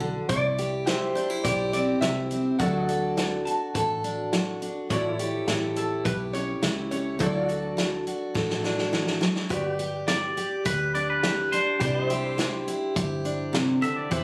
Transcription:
Already playing: B1 D4 F#4 A4
0.00 D3
0.29 C2 C3 E4 D5, kick, closed hi-hat
0.58 G4, closed hi-hat
0.86 G3 G4 C5 E5, snare, closed hi-hat
1.15 D4 C5, closed hi-hat
1.30 E4
1.44 B1 G2 G4 D5, kick, closed hi-hat
1.73 C4 D5, closed hi-hat
2.01 C2 G3 E4 E5, snare, closed hi-hat
2.31 C4, closed hi-hat
2.59 D2 D3 F#3 D4 F#4 A4 E5 F#5, kick, closed hi-hat
2.87 A4 D5, closed hi-hat
3.17 F#3, snare, closed hi-hat
3.45 F#4 A5, closed hi-hat
3.74 A1 A2 A4 A5, kick, closed hi-hat
4.04 D4, closed hi-hat
4.33 F#3 F#4, snare, closed hi-hat
4.62 D4, closed hi-hat
4.90 A1 A2 E4 F#4 A4 C#5 D5, kick, closed hi-hat
5.13 E4 C#5
5.19 G4, closed hi-hat
5.48 A1 A3, snare, closed hi-hat
5.76 E4 A4, closed hi-hat
6.05 B1 E3 G4 B4, kick, closed hi-hat
6.33 C#4 C#5, closed hi-hat
6.62 C#2 A3 E4, snare, closed hi-hat
6.91 C#4 C#5, closed hi-hat
7.19 D2 D3 F#3 D4 E4 F#4 A4 D5, kick, closed hi-hat
7.23 D5
7.46 F#4 A4, closed hi-hat
7.77 F#3, snare, closed hi-hat
8.07 F#4, closed hi-hat
8.35 A1 A2 A4, kick, snare
8.50 snare
8.64 D4, snare
8.78 snare
8.93 E3, snare
9.07 snare
9.21 F#3, snare
9.36 snare
9.49 G1 G2 F#4 G4 B4 D5, kick, closed hi-hat
9.70 G4
9.79 G4, closed hi-hat
10.08 B3 D5, snare, closed hi-hat
10.37 G4, closed hi-hat
10.65 D2 G2 G4 B4, kick, closed hi-hat
10.95 D4 D5, closed hi-hat
11.10 B4
11.23 B3 G4, snare, closed hi-hat
11.52 D4 C5, closed hi-hat
11.80 C2 C3 G3 D4 E4 G4 B4 D5, kick, closed hi-hat
12.01 C5
12.07 G4 E5, closed hi-hat
12.38 G3, snare, closed hi-hat
12.68 E4, closed hi-hat
12.96 G1 G2 G4, kick, closed hi-hat
13.25 D4, closed hi-hat
13.53 C3, snare, closed hi-hat
13.82 D3 E5, closed hi-hat
13.96 D5
14.11 E2 E3 E4 G4 B4 C5 E5, kick, closed hi-hat

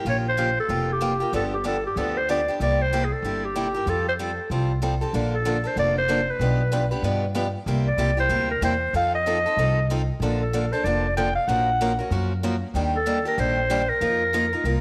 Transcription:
0.05 A#1 C#3 F3 A#3 F4 G4
0.09 C#5
0.29 C5
0.37 C#3 F3 A#3 F4 G4
0.60 A4
0.69 F1 C#3 F3 A#3 F4 G4
0.93 G4
1.01 C#3 F3 A#3 F4 G4
1.20 A#3 F4 G4
1.33 G1 D3 F3 B3 D4 G4 A4
1.54 G4
1.64 D3 F3 B3 D4 G4 A4
1.86 G4
1.96 D2 D3 F3 B3 D4 G4 A4
2.17 C5
2.29 D3 F3 B3 D4 G4 D5
2.48 B3 D4 G4
2.60 C2 C3 G3 A#3 E4 G4 D5
2.81 C5
2.93 C3 G3 A#3 E4 G4
3.04 G#4
3.12 A4
3.22 G1 C3 G3 A#3 E4 G4
3.45 G4
3.56 C3 G3 A#3 E4 G4
3.74 A#3 E4 G4
3.86 F2 F3 G3 C4 G4 A4
4.08 C5
4.19 F3 G3 C4 G4 A4
4.50 C2 F3 G3 C4 F4 G4 A4
4.82 F3 G3 C4 G4 A4
5.01 C4 G4 A4
5.13 A#1 D3 F3 A#3 D4 A4
5.34 A4
5.45 D3 F3 A#3 D4 A4
5.64 A#3 D4 A4 C5
5.76 F1 D3 F3 A#3 D4 A4 D5
5.98 C5
6.08 D3 F3 A#3 D4 A4
6.30 B4
6.39 B1 B2 F3 B3 D4 G4 B4
6.72 B2 F3 B3 D4 G4 B4
6.91 B3 D4 G4 B4
7.02 G2 B2 F3 B3 D4 G4 B4
7.35 B2 F3 B3 D4 G4 B4
7.66 C2 C3 G3 A#3 E4 G4
7.87 D5
7.97 C2 C3 G3 A#3 E4 G4
8.17 A#3 E4 G4 C5
8.29 D2 C3 G3 A#3 E4 G4
8.51 A#4
8.61 E2 C3 G3 A#3 E4 G4 C5
8.93 F2 F3 C4 D#4 A4 F5
9.15 D#5
9.26 F3 C4 D#4 A4
9.46 C4 D#4 A4
9.57 C2 F3 C4 D#4 A4
9.90 F3 C4 D#4 A4
10.20 A#1 D3 F3 A#3 D4 A4
10.42 A4
10.53 D3 F3 A#3 D4 A4
10.72 A#3 D4 A4 C5
10.84 F1 D3 F3 A#3 D4 A4 D5
11.17 D3 F3 A#3 D4 A4 G5
11.35 F5
11.48 A#1 F3 A#3 C#4 F#4 A#4 F#5
11.81 F3 A#3 C#4 F#4 A#4
11.99 C#4 F#4 A#4
12.10 F#2 F3 A#3 C#4 F#4 A#4
12.43 F3 A#3 C#4 F#4 A#4
12.74 D#2 D#3 G3 A#3 D4 G4
12.96 A4
13.06 D#3 G3 A#3 D4 G4
13.25 A#3 D4 G4 A#4
13.38 A#1 D#3 G3 A#3 D4 G4 C5
13.70 D#3 G3 A#3 D4 G4
13.89 A#4
14.01 F2 F3 A#3 D#4 F4 A#4
14.33 F3 A#3 D#4 F4 A#4
14.53 D#4 F4 A#4
14.64 C2 F3 A#3 D#4 F4 A#4

